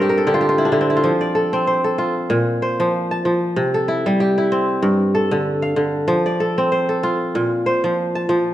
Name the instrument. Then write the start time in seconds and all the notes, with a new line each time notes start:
kora
Already playing: G2 C4 A4 C5 D5 E5
0.02 G4
0.09 A#4
0.18 A4
0.27 D3 G4
0.34 F4
0.41 G4
0.49 F4
0.58 E4
0.65 D4
0.72 D3 E4
0.81 C4
0.90 E4
0.97 F4
1.04 F3
1.21 D5
1.35 A4
1.53 C4
1.67 C5
1.84 A4
1.98 F4
2.30 A#2
2.62 C5
2.80 F3
3.11 A5
3.25 F3
3.56 C3
3.74 A4
3.88 E4
4.06 G3
4.20 G4
4.38 E4
4.52 C4
4.83 G2
5.15 A4
5.31 D3
5.62 F5
5.76 D3
6.08 F3
6.26 D5
6.40 A4
6.58 C4
6.72 C5
6.89 A4
7.03 F4
7.35 A#2
7.66 C5
7.84 F3
8.15 A5
8.29 F3